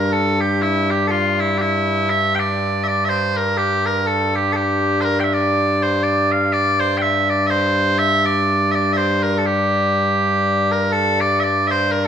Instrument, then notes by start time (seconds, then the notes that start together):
bagpipes
Already playing: G2 G3 D4 A#4
0.12 A4
0.40 G4
0.62 E4
0.91 G4
1.07 F4 A4
1.40 E4
1.58 E4 G4
2.10 E5
2.35 G5
2.39 D5
2.84 E5
2.88 D5
3.05 E5
3.09 C5
3.36 A#4
3.57 G4
3.86 A#4
4.07 A4
4.35 G4
4.52 G4 A4
5.01 A#4 C5
5.20 E5 G5
5.34 D5
5.82 C5
6.03 D5
6.32 F5
6.53 D5
6.80 C5
6.97 G5
7.02 E5
7.30 D5
7.47 C5 E5
7.98 E5
8.26 D5
8.71 D5 E5
8.93 E5
8.97 C5
9.23 A#4
9.38 A4
9.46 G4
10.71 A#4
10.92 A4
11.20 D5
11.40 D5 E5
11.67 C5 E5
11.91 A#4